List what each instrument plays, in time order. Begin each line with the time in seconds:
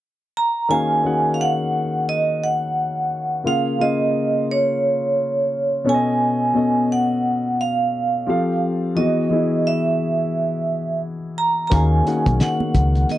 0.37 vibraphone A#5
0.69 grand piano D#3 A#3 C#4 F#4 G#4 F5, vibraphone G#5
1.03 grand piano D#3 A#3 C#4 F#4 G#4 F#5
1.34 vibraphone F5
1.41 vibraphone F#5
2.09 vibraphone D#5
2.44 vibraphone F#5
3.44 grand piano C#3 A#3 F4 G#4 F5, vibraphone F5
3.78 grand piano C#3 A#3 F4 G#4 F5, vibraphone D#5
4.51 vibraphone C#5
5.84 grand piano B2 B3 C#4 A4 C#5
5.89 vibraphone G#5
5.94 grand piano D#5
6.54 grand piano B2 B3 C#4 A4 D#5
6.92 vibraphone F#5
7.61 vibraphone F5
8.26 grand piano F3 C4 G4 A4 F5
8.95 grand piano E3 B3 F#4 G#4 D#5, vibraphone D#5
9.29 grand piano E3 B3 E4 F#4 G#4
9.67 vibraphone E5
11.38 vibraphone A#5
11.67 grand piano D#3 A#3 C#4, vibraphone A#5
11.71 fingered electric bass D#2, grand piano F#4 G#4 F5, vibraphone G#5, kick, closed hi-hat
12.04 grand piano D#3 A#3 C#4 F#4 G#4 F#5, closed hi-hat
12.26 fingered electric bass B1, kick, closed hi-hat, high conga
12.40 vibraphone F#5, snare, closed hi-hat, muted conga
12.60 high conga
12.74 fingered electric bass C#2, kick, closed hi-hat, low conga
12.95 closed hi-hat
13.09 vibraphone D#5, closed hi-hat, high conga